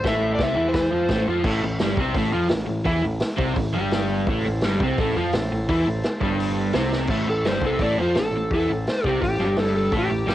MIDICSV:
0, 0, Header, 1, 6, 480
1, 0, Start_track
1, 0, Key_signature, 0, "minor"
1, 0, Tempo, 352941
1, 54, Time_signature, 4, 2, 24, 8
1, 14073, End_track
2, 0, Start_track
2, 0, Title_t, "Electric slide guitar"
2, 0, Program_c, 0, 29
2, 100, Note_on_c, 0, 76, 101
2, 450, Note_off_c, 0, 76, 0
2, 475, Note_on_c, 0, 74, 84
2, 560, Note_off_c, 0, 74, 0
2, 582, Note_on_c, 0, 76, 88
2, 930, Note_on_c, 0, 72, 76
2, 932, Note_off_c, 0, 76, 0
2, 1016, Note_off_c, 0, 72, 0
2, 1032, Note_on_c, 0, 72, 75
2, 1700, Note_off_c, 0, 72, 0
2, 9928, Note_on_c, 0, 69, 92
2, 10147, Note_off_c, 0, 69, 0
2, 10177, Note_on_c, 0, 72, 93
2, 10391, Note_off_c, 0, 72, 0
2, 10422, Note_on_c, 0, 69, 84
2, 10626, Note_on_c, 0, 74, 87
2, 10634, Note_off_c, 0, 69, 0
2, 10855, Note_off_c, 0, 74, 0
2, 10878, Note_on_c, 0, 72, 83
2, 11101, Note_off_c, 0, 72, 0
2, 11137, Note_on_c, 0, 69, 88
2, 11584, Note_off_c, 0, 69, 0
2, 11612, Note_on_c, 0, 69, 103
2, 11828, Note_off_c, 0, 69, 0
2, 12101, Note_on_c, 0, 72, 86
2, 12308, Note_off_c, 0, 72, 0
2, 12308, Note_on_c, 0, 67, 96
2, 12536, Note_off_c, 0, 67, 0
2, 12551, Note_on_c, 0, 67, 81
2, 13010, Note_off_c, 0, 67, 0
2, 13054, Note_on_c, 0, 69, 92
2, 13260, Note_off_c, 0, 69, 0
2, 13276, Note_on_c, 0, 69, 92
2, 13500, Note_off_c, 0, 69, 0
2, 13579, Note_on_c, 0, 67, 87
2, 14073, Note_off_c, 0, 67, 0
2, 14073, End_track
3, 0, Start_track
3, 0, Title_t, "Transistor combo organ"
3, 0, Program_c, 1, 18
3, 0, Note_on_c, 1, 69, 71
3, 0, Note_on_c, 1, 72, 93
3, 0, Note_on_c, 1, 76, 81
3, 1926, Note_off_c, 1, 72, 0
3, 1929, Note_off_c, 1, 76, 0
3, 1933, Note_off_c, 1, 69, 0
3, 5795, Note_on_c, 1, 64, 81
3, 5800, Note_on_c, 1, 69, 72
3, 5832, Note_on_c, 1, 72, 92
3, 9589, Note_off_c, 1, 64, 0
3, 9592, Note_off_c, 1, 69, 0
3, 9608, Note_off_c, 1, 72, 0
3, 9612, Note_on_c, 1, 64, 78
3, 9631, Note_on_c, 1, 72, 88
3, 9635, Note_on_c, 1, 69, 73
3, 13418, Note_off_c, 1, 64, 0
3, 13428, Note_off_c, 1, 72, 0
3, 13430, Note_off_c, 1, 69, 0
3, 13477, Note_on_c, 1, 69, 60
3, 13482, Note_on_c, 1, 64, 70
3, 13487, Note_on_c, 1, 74, 72
3, 14073, Note_off_c, 1, 64, 0
3, 14073, Note_off_c, 1, 69, 0
3, 14073, Note_off_c, 1, 74, 0
3, 14073, End_track
4, 0, Start_track
4, 0, Title_t, "Overdriven electric guitar"
4, 0, Program_c, 2, 29
4, 64, Note_on_c, 2, 45, 91
4, 80, Note_on_c, 2, 57, 95
4, 535, Note_off_c, 2, 45, 0
4, 543, Note_off_c, 2, 57, 0
4, 565, Note_on_c, 2, 48, 91
4, 574, Note_on_c, 2, 60, 99
4, 743, Note_off_c, 2, 48, 0
4, 748, Note_on_c, 2, 52, 90
4, 772, Note_off_c, 2, 60, 0
4, 778, Note_on_c, 2, 64, 96
4, 1232, Note_off_c, 2, 52, 0
4, 1237, Note_on_c, 2, 53, 92
4, 1254, Note_off_c, 2, 64, 0
4, 1272, Note_on_c, 2, 65, 94
4, 1483, Note_off_c, 2, 53, 0
4, 1501, Note_off_c, 2, 65, 0
4, 1521, Note_on_c, 2, 45, 92
4, 1533, Note_on_c, 2, 57, 97
4, 1741, Note_off_c, 2, 45, 0
4, 1746, Note_on_c, 2, 53, 81
4, 1752, Note_off_c, 2, 57, 0
4, 1767, Note_on_c, 2, 65, 101
4, 1953, Note_off_c, 2, 53, 0
4, 1958, Note_on_c, 2, 45, 95
4, 1982, Note_off_c, 2, 65, 0
4, 1987, Note_on_c, 2, 57, 108
4, 2205, Note_off_c, 2, 45, 0
4, 2220, Note_off_c, 2, 57, 0
4, 2248, Note_on_c, 2, 45, 79
4, 2430, Note_off_c, 2, 45, 0
4, 2463, Note_on_c, 2, 43, 93
4, 2499, Note_on_c, 2, 55, 104
4, 2699, Note_off_c, 2, 43, 0
4, 2708, Note_on_c, 2, 48, 89
4, 2716, Note_off_c, 2, 55, 0
4, 2716, Note_on_c, 2, 60, 109
4, 2941, Note_off_c, 2, 48, 0
4, 2945, Note_off_c, 2, 60, 0
4, 2948, Note_on_c, 2, 45, 95
4, 2972, Note_on_c, 2, 57, 102
4, 3165, Note_off_c, 2, 45, 0
4, 3166, Note_off_c, 2, 57, 0
4, 3170, Note_on_c, 2, 53, 97
4, 3171, Note_on_c, 2, 65, 99
4, 3396, Note_off_c, 2, 53, 0
4, 3402, Note_on_c, 2, 45, 77
4, 3413, Note_off_c, 2, 65, 0
4, 3608, Note_off_c, 2, 45, 0
4, 3628, Note_on_c, 2, 45, 79
4, 3841, Note_off_c, 2, 45, 0
4, 3869, Note_on_c, 2, 52, 98
4, 3891, Note_on_c, 2, 64, 111
4, 4122, Note_off_c, 2, 52, 0
4, 4129, Note_on_c, 2, 45, 77
4, 4134, Note_off_c, 2, 64, 0
4, 4332, Note_off_c, 2, 45, 0
4, 4578, Note_on_c, 2, 48, 98
4, 4603, Note_on_c, 2, 60, 107
4, 4826, Note_off_c, 2, 48, 0
4, 4831, Note_on_c, 2, 45, 77
4, 4849, Note_off_c, 2, 60, 0
4, 5043, Note_off_c, 2, 45, 0
4, 5077, Note_on_c, 2, 43, 96
4, 5087, Note_on_c, 2, 55, 107
4, 5806, Note_off_c, 2, 43, 0
4, 5811, Note_off_c, 2, 55, 0
4, 5828, Note_on_c, 2, 45, 103
4, 5845, Note_on_c, 2, 57, 113
4, 6061, Note_off_c, 2, 45, 0
4, 6070, Note_off_c, 2, 57, 0
4, 6076, Note_on_c, 2, 45, 78
4, 6264, Note_off_c, 2, 45, 0
4, 6311, Note_on_c, 2, 43, 98
4, 6323, Note_on_c, 2, 55, 111
4, 6542, Note_off_c, 2, 43, 0
4, 6548, Note_off_c, 2, 55, 0
4, 6561, Note_on_c, 2, 48, 93
4, 6576, Note_on_c, 2, 60, 117
4, 6786, Note_off_c, 2, 48, 0
4, 6791, Note_on_c, 2, 45, 99
4, 6794, Note_off_c, 2, 60, 0
4, 6803, Note_on_c, 2, 57, 106
4, 7018, Note_off_c, 2, 45, 0
4, 7023, Note_on_c, 2, 53, 99
4, 7028, Note_off_c, 2, 57, 0
4, 7039, Note_on_c, 2, 65, 112
4, 7258, Note_off_c, 2, 53, 0
4, 7266, Note_off_c, 2, 65, 0
4, 7279, Note_on_c, 2, 45, 77
4, 7465, Note_off_c, 2, 45, 0
4, 7514, Note_on_c, 2, 45, 79
4, 7702, Note_off_c, 2, 45, 0
4, 7735, Note_on_c, 2, 52, 98
4, 7757, Note_on_c, 2, 64, 113
4, 7973, Note_off_c, 2, 52, 0
4, 7979, Note_on_c, 2, 45, 82
4, 7984, Note_off_c, 2, 64, 0
4, 8173, Note_off_c, 2, 45, 0
4, 8444, Note_on_c, 2, 43, 94
4, 8475, Note_on_c, 2, 55, 103
4, 9153, Note_on_c, 2, 48, 87
4, 9165, Note_off_c, 2, 43, 0
4, 9168, Note_on_c, 2, 60, 103
4, 9181, Note_off_c, 2, 55, 0
4, 9639, Note_off_c, 2, 48, 0
4, 9647, Note_off_c, 2, 60, 0
4, 9653, Note_on_c, 2, 45, 92
4, 9660, Note_on_c, 2, 57, 109
4, 9884, Note_off_c, 2, 45, 0
4, 9893, Note_off_c, 2, 57, 0
4, 9900, Note_on_c, 2, 45, 74
4, 10092, Note_off_c, 2, 45, 0
4, 10141, Note_on_c, 2, 43, 86
4, 10162, Note_on_c, 2, 55, 99
4, 10373, Note_off_c, 2, 43, 0
4, 10383, Note_off_c, 2, 55, 0
4, 10391, Note_on_c, 2, 48, 82
4, 10413, Note_on_c, 2, 60, 95
4, 10618, Note_off_c, 2, 48, 0
4, 10629, Note_off_c, 2, 60, 0
4, 10636, Note_on_c, 2, 45, 97
4, 10654, Note_on_c, 2, 57, 108
4, 10860, Note_off_c, 2, 45, 0
4, 10869, Note_off_c, 2, 57, 0
4, 10893, Note_on_c, 2, 53, 91
4, 10916, Note_on_c, 2, 65, 110
4, 11108, Note_off_c, 2, 53, 0
4, 11120, Note_off_c, 2, 65, 0
4, 11130, Note_on_c, 2, 45, 72
4, 11306, Note_off_c, 2, 45, 0
4, 11383, Note_on_c, 2, 45, 71
4, 11553, Note_off_c, 2, 45, 0
4, 11615, Note_on_c, 2, 52, 103
4, 11627, Note_on_c, 2, 64, 107
4, 11829, Note_off_c, 2, 52, 0
4, 11835, Note_off_c, 2, 64, 0
4, 11835, Note_on_c, 2, 45, 74
4, 12018, Note_off_c, 2, 45, 0
4, 12323, Note_on_c, 2, 48, 89
4, 12338, Note_on_c, 2, 60, 101
4, 12543, Note_off_c, 2, 48, 0
4, 12550, Note_off_c, 2, 60, 0
4, 12588, Note_on_c, 2, 45, 71
4, 12755, Note_off_c, 2, 45, 0
4, 12777, Note_on_c, 2, 43, 96
4, 12789, Note_on_c, 2, 55, 101
4, 13490, Note_off_c, 2, 43, 0
4, 13492, Note_on_c, 2, 45, 104
4, 13496, Note_off_c, 2, 55, 0
4, 13500, Note_on_c, 2, 57, 100
4, 13722, Note_off_c, 2, 45, 0
4, 13732, Note_off_c, 2, 57, 0
4, 13739, Note_on_c, 2, 45, 74
4, 13930, Note_off_c, 2, 45, 0
4, 13963, Note_on_c, 2, 43, 89
4, 13987, Note_on_c, 2, 55, 111
4, 14073, Note_off_c, 2, 43, 0
4, 14073, Note_off_c, 2, 55, 0
4, 14073, End_track
5, 0, Start_track
5, 0, Title_t, "Picked electric bass"
5, 0, Program_c, 3, 34
5, 49, Note_on_c, 3, 33, 81
5, 500, Note_off_c, 3, 33, 0
5, 534, Note_on_c, 3, 36, 87
5, 755, Note_off_c, 3, 36, 0
5, 763, Note_on_c, 3, 40, 89
5, 1220, Note_off_c, 3, 40, 0
5, 1260, Note_on_c, 3, 41, 88
5, 1468, Note_off_c, 3, 41, 0
5, 1477, Note_on_c, 3, 33, 92
5, 1713, Note_off_c, 3, 33, 0
5, 1729, Note_on_c, 3, 41, 95
5, 1953, Note_off_c, 3, 41, 0
5, 1961, Note_on_c, 3, 33, 98
5, 2197, Note_off_c, 3, 33, 0
5, 2214, Note_on_c, 3, 33, 91
5, 2444, Note_off_c, 3, 33, 0
5, 2450, Note_on_c, 3, 31, 95
5, 2674, Note_off_c, 3, 31, 0
5, 2682, Note_on_c, 3, 36, 105
5, 2905, Note_off_c, 3, 36, 0
5, 2914, Note_on_c, 3, 33, 93
5, 3153, Note_off_c, 3, 33, 0
5, 3172, Note_on_c, 3, 41, 97
5, 3403, Note_off_c, 3, 41, 0
5, 3423, Note_on_c, 3, 33, 85
5, 3649, Note_off_c, 3, 33, 0
5, 3658, Note_on_c, 3, 33, 85
5, 3871, Note_off_c, 3, 33, 0
5, 3879, Note_on_c, 3, 40, 90
5, 4117, Note_off_c, 3, 40, 0
5, 4138, Note_on_c, 3, 33, 84
5, 4367, Note_off_c, 3, 33, 0
5, 4603, Note_on_c, 3, 36, 99
5, 4839, Note_off_c, 3, 36, 0
5, 4845, Note_on_c, 3, 33, 83
5, 5073, Note_off_c, 3, 33, 0
5, 5081, Note_on_c, 3, 31, 96
5, 5764, Note_off_c, 3, 31, 0
5, 5804, Note_on_c, 3, 33, 90
5, 6039, Note_off_c, 3, 33, 0
5, 6052, Note_on_c, 3, 33, 88
5, 6283, Note_off_c, 3, 33, 0
5, 6297, Note_on_c, 3, 31, 99
5, 6513, Note_off_c, 3, 31, 0
5, 6521, Note_on_c, 3, 36, 102
5, 6757, Note_off_c, 3, 36, 0
5, 6773, Note_on_c, 3, 33, 101
5, 7003, Note_off_c, 3, 33, 0
5, 7023, Note_on_c, 3, 41, 95
5, 7243, Note_off_c, 3, 41, 0
5, 7251, Note_on_c, 3, 33, 90
5, 7481, Note_off_c, 3, 33, 0
5, 7496, Note_on_c, 3, 33, 84
5, 7723, Note_off_c, 3, 33, 0
5, 7730, Note_on_c, 3, 40, 94
5, 7960, Note_off_c, 3, 40, 0
5, 7977, Note_on_c, 3, 33, 89
5, 8203, Note_off_c, 3, 33, 0
5, 8445, Note_on_c, 3, 31, 103
5, 9122, Note_off_c, 3, 31, 0
5, 9170, Note_on_c, 3, 36, 103
5, 9621, Note_off_c, 3, 36, 0
5, 9638, Note_on_c, 3, 33, 83
5, 9871, Note_off_c, 3, 33, 0
5, 9895, Note_on_c, 3, 33, 82
5, 10110, Note_off_c, 3, 33, 0
5, 10119, Note_on_c, 3, 31, 91
5, 10346, Note_off_c, 3, 31, 0
5, 10354, Note_on_c, 3, 36, 87
5, 10589, Note_off_c, 3, 36, 0
5, 10595, Note_on_c, 3, 33, 98
5, 10829, Note_off_c, 3, 33, 0
5, 10849, Note_on_c, 3, 41, 91
5, 11067, Note_off_c, 3, 41, 0
5, 11076, Note_on_c, 3, 33, 80
5, 11295, Note_off_c, 3, 33, 0
5, 11303, Note_on_c, 3, 33, 80
5, 11542, Note_off_c, 3, 33, 0
5, 11564, Note_on_c, 3, 40, 91
5, 11794, Note_off_c, 3, 40, 0
5, 11813, Note_on_c, 3, 33, 85
5, 12038, Note_off_c, 3, 33, 0
5, 12293, Note_on_c, 3, 36, 94
5, 12518, Note_off_c, 3, 36, 0
5, 12531, Note_on_c, 3, 33, 80
5, 12741, Note_off_c, 3, 33, 0
5, 12749, Note_on_c, 3, 31, 96
5, 13432, Note_off_c, 3, 31, 0
5, 13491, Note_on_c, 3, 33, 92
5, 13717, Note_off_c, 3, 33, 0
5, 13735, Note_on_c, 3, 33, 80
5, 13945, Note_off_c, 3, 33, 0
5, 13953, Note_on_c, 3, 31, 97
5, 14073, Note_off_c, 3, 31, 0
5, 14073, End_track
6, 0, Start_track
6, 0, Title_t, "Drums"
6, 54, Note_on_c, 9, 36, 116
6, 61, Note_on_c, 9, 46, 52
6, 73, Note_on_c, 9, 38, 113
6, 190, Note_off_c, 9, 36, 0
6, 197, Note_off_c, 9, 46, 0
6, 209, Note_off_c, 9, 38, 0
6, 522, Note_on_c, 9, 46, 53
6, 531, Note_on_c, 9, 36, 104
6, 534, Note_on_c, 9, 38, 101
6, 658, Note_off_c, 9, 46, 0
6, 667, Note_off_c, 9, 36, 0
6, 670, Note_off_c, 9, 38, 0
6, 1003, Note_on_c, 9, 46, 60
6, 1010, Note_on_c, 9, 36, 111
6, 1016, Note_on_c, 9, 38, 113
6, 1139, Note_off_c, 9, 46, 0
6, 1146, Note_off_c, 9, 36, 0
6, 1152, Note_off_c, 9, 38, 0
6, 1478, Note_on_c, 9, 46, 57
6, 1485, Note_on_c, 9, 36, 107
6, 1490, Note_on_c, 9, 38, 110
6, 1614, Note_off_c, 9, 46, 0
6, 1621, Note_off_c, 9, 36, 0
6, 1626, Note_off_c, 9, 38, 0
6, 1958, Note_on_c, 9, 49, 127
6, 1962, Note_on_c, 9, 36, 117
6, 2094, Note_off_c, 9, 49, 0
6, 2098, Note_off_c, 9, 36, 0
6, 2434, Note_on_c, 9, 46, 65
6, 2446, Note_on_c, 9, 38, 114
6, 2570, Note_off_c, 9, 46, 0
6, 2582, Note_off_c, 9, 38, 0
6, 2683, Note_on_c, 9, 36, 108
6, 2819, Note_off_c, 9, 36, 0
6, 2913, Note_on_c, 9, 46, 61
6, 2918, Note_on_c, 9, 36, 103
6, 3049, Note_off_c, 9, 46, 0
6, 3054, Note_off_c, 9, 36, 0
6, 3384, Note_on_c, 9, 46, 63
6, 3396, Note_on_c, 9, 38, 119
6, 3520, Note_off_c, 9, 46, 0
6, 3532, Note_off_c, 9, 38, 0
6, 3882, Note_on_c, 9, 36, 110
6, 3884, Note_on_c, 9, 46, 64
6, 4018, Note_off_c, 9, 36, 0
6, 4020, Note_off_c, 9, 46, 0
6, 4349, Note_on_c, 9, 46, 64
6, 4362, Note_on_c, 9, 38, 111
6, 4485, Note_off_c, 9, 46, 0
6, 4498, Note_off_c, 9, 38, 0
6, 4604, Note_on_c, 9, 36, 102
6, 4740, Note_off_c, 9, 36, 0
6, 4844, Note_on_c, 9, 36, 96
6, 4846, Note_on_c, 9, 46, 65
6, 4980, Note_off_c, 9, 36, 0
6, 4982, Note_off_c, 9, 46, 0
6, 5320, Note_on_c, 9, 46, 72
6, 5332, Note_on_c, 9, 38, 117
6, 5456, Note_off_c, 9, 46, 0
6, 5468, Note_off_c, 9, 38, 0
6, 5799, Note_on_c, 9, 46, 66
6, 5805, Note_on_c, 9, 36, 110
6, 5935, Note_off_c, 9, 46, 0
6, 5941, Note_off_c, 9, 36, 0
6, 6271, Note_on_c, 9, 46, 60
6, 6283, Note_on_c, 9, 38, 117
6, 6407, Note_off_c, 9, 46, 0
6, 6419, Note_off_c, 9, 38, 0
6, 6530, Note_on_c, 9, 36, 107
6, 6666, Note_off_c, 9, 36, 0
6, 6773, Note_on_c, 9, 36, 112
6, 6773, Note_on_c, 9, 46, 69
6, 6909, Note_off_c, 9, 36, 0
6, 6909, Note_off_c, 9, 46, 0
6, 7242, Note_on_c, 9, 46, 67
6, 7254, Note_on_c, 9, 38, 119
6, 7378, Note_off_c, 9, 46, 0
6, 7390, Note_off_c, 9, 38, 0
6, 7736, Note_on_c, 9, 36, 103
6, 7754, Note_on_c, 9, 46, 59
6, 7872, Note_off_c, 9, 36, 0
6, 7890, Note_off_c, 9, 46, 0
6, 8206, Note_on_c, 9, 46, 60
6, 8218, Note_on_c, 9, 38, 114
6, 8342, Note_off_c, 9, 46, 0
6, 8354, Note_off_c, 9, 38, 0
6, 8446, Note_on_c, 9, 36, 106
6, 8582, Note_off_c, 9, 36, 0
6, 8701, Note_on_c, 9, 46, 70
6, 8837, Note_off_c, 9, 46, 0
6, 9150, Note_on_c, 9, 46, 68
6, 9162, Note_on_c, 9, 38, 112
6, 9286, Note_off_c, 9, 46, 0
6, 9298, Note_off_c, 9, 38, 0
6, 9417, Note_on_c, 9, 38, 67
6, 9553, Note_off_c, 9, 38, 0
6, 9621, Note_on_c, 9, 49, 115
6, 9634, Note_on_c, 9, 36, 105
6, 9757, Note_off_c, 9, 49, 0
6, 9770, Note_off_c, 9, 36, 0
6, 10126, Note_on_c, 9, 46, 59
6, 10139, Note_on_c, 9, 38, 107
6, 10262, Note_off_c, 9, 46, 0
6, 10275, Note_off_c, 9, 38, 0
6, 10356, Note_on_c, 9, 36, 105
6, 10492, Note_off_c, 9, 36, 0
6, 10592, Note_on_c, 9, 46, 58
6, 10595, Note_on_c, 9, 36, 102
6, 10728, Note_off_c, 9, 46, 0
6, 10731, Note_off_c, 9, 36, 0
6, 11077, Note_on_c, 9, 46, 57
6, 11089, Note_on_c, 9, 38, 111
6, 11213, Note_off_c, 9, 46, 0
6, 11225, Note_off_c, 9, 38, 0
6, 11571, Note_on_c, 9, 36, 102
6, 11589, Note_on_c, 9, 46, 58
6, 11707, Note_off_c, 9, 36, 0
6, 11725, Note_off_c, 9, 46, 0
6, 12060, Note_on_c, 9, 46, 56
6, 12073, Note_on_c, 9, 38, 105
6, 12196, Note_off_c, 9, 46, 0
6, 12209, Note_off_c, 9, 38, 0
6, 12298, Note_on_c, 9, 36, 106
6, 12434, Note_off_c, 9, 36, 0
6, 12537, Note_on_c, 9, 36, 92
6, 12561, Note_on_c, 9, 46, 64
6, 12673, Note_off_c, 9, 36, 0
6, 12697, Note_off_c, 9, 46, 0
6, 13006, Note_on_c, 9, 46, 63
6, 13018, Note_on_c, 9, 38, 112
6, 13142, Note_off_c, 9, 46, 0
6, 13154, Note_off_c, 9, 38, 0
6, 13487, Note_on_c, 9, 46, 59
6, 13493, Note_on_c, 9, 36, 105
6, 13623, Note_off_c, 9, 46, 0
6, 13629, Note_off_c, 9, 36, 0
6, 13982, Note_on_c, 9, 46, 58
6, 13995, Note_on_c, 9, 38, 114
6, 14073, Note_off_c, 9, 38, 0
6, 14073, Note_off_c, 9, 46, 0
6, 14073, End_track
0, 0, End_of_file